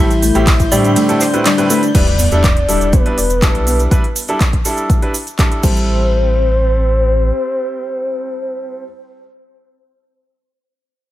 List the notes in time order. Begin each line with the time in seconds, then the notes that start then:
Already playing: A1 E4 E5 G6
0.11 closed hi-hat, cabasa
0.22 A3 A4, open hi-hat, cabasa
0.35 A1 A2 G3 C4 E4 G4, closed hi-hat, cabasa
0.47 C5 C6, kick, clap, closed hi-hat, ride, cabasa
0.60 kick, closed hi-hat, cabasa
0.72 A2 G3 C4 D4 E4 G4 D5, open hi-hat, cabasa
0.84 closed hi-hat, cabasa
0.96 A3 A4, closed hi-hat, ride, cabasa
1.09 A2 G3 C4 E4 A4, closed hi-hat, cabasa
1.20 C5 C6, clap, open hi-hat, cabasa
1.33 A2 G3 C4 E4 B4, closed hi-hat, cabasa
1.46 G3 D4 G4 D5, clap, closed hi-hat, ride, cabasa
1.58 A2 G3 C4 E4 B4, closed hi-hat, cabasa
1.70 G3 A3 C4 E4 A4 B4, open hi-hat, cabasa
1.83 closed hi-hat, cabasa
1.95 E2 G3 D4 E4 B4 D5, kick, closed hi-hat, crash, impact, cabasa
2.07 closed hi-hat
2.19 B3, open hi-hat, cabasa
2.31 E2 G3 D4 E4 A4, closed hi-hat, cabasa
2.44 D5, kick, clap, closed hi-hat, cabasa
2.57 closed hi-hat
2.68 E1 G3 D4 E4 A4, open hi-hat, cabasa
2.81 closed hi-hat, cabasa
2.93 B3 B4, kick, closed hi-hat, cabasa
3.06 G3 D4 E4 B4, closed hi-hat
3.18 E1 D5, open hi-hat, cabasa
3.30 closed hi-hat, cabasa
3.42 G3 D4 E4 A4, kick, clap, closed hi-hat, cabasa
3.55 B1, closed hi-hat
3.67 B3, open hi-hat, cabasa
3.79 closed hi-hat, cabasa
3.91 G3 D4 E4 B4, kick, closed hi-hat, cabasa
4.04 closed hi-hat
4.16 open hi-hat, cabasa
4.28 G3 D4 E4 A4, closed hi-hat, cabasa
4.40 kick, clap, closed hi-hat, cabasa
4.53 kick, closed hi-hat
4.65 G3 D4 E4 A4, open hi-hat, cabasa
4.77 closed hi-hat, cabasa
4.90 kick, closed hi-hat, cabasa
5.02 G3 D4 E4 B4, closed hi-hat
5.14 open hi-hat, cabasa
5.27 closed hi-hat, cabasa
5.39 G3 D4 E4 A4, kick, clap, closed hi-hat, cabasa
5.52 closed hi-hat
5.63 A1 G3 C4 E4 A4 C5, kick, crash, cabasa
5.76 cabasa